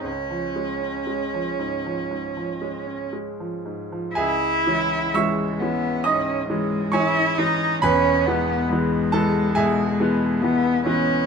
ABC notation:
X:1
M:4/4
L:1/16
Q:1/4=67
K:Db
V:1 name="Cello"
D12 z4 | [K:C#m] E4 G,2 B,2 C2 G,2 E2 D2 | C2 B,2 G,8 B,2 C2 |]
V:2 name="Grand piano"
z16 | [K:C#m] [Geg]4 [ec'e']4 [dd']4 [cgc']4 | [Bgb]6 [Aa]2 [Geg]6 z2 |]
V:3 name="Grand piano" clef=bass
D,, F, A, D A, F, A,, F, A,, F, A, D A, F, A,, F, | [K:C#m] C,,2 [E,G,C]2 [E,G,C]2 [E,G,C]2 G,,2 [E,G,C]2 [E,G,C]2 [E,G,C]2 | [E,,,E,,]2 [E,G,B,]2 [E,G,B,]2 [E,G,B,]2 B,,2 [E,G,B,]2 [E,G,B,]2 [E,G,B,]2 |]